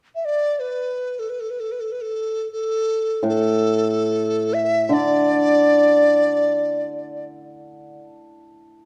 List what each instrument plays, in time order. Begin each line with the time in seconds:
0.15 dizi E5
0.25 dizi D5
0.60 dizi B4
1.19 dizi A4
1.30 dizi B4
1.40 dizi A4
1.50 dizi B4
1.60 dizi A4
1.72 dizi B4
1.80 dizi A4
1.92 dizi B4
2.01 dizi A4
2.52 dizi A4
3.23 hammered dulcimer A2
3.29 dizi A4
4.54 dizi E5
4.89 hammered dulcimer D3
4.93 dizi D5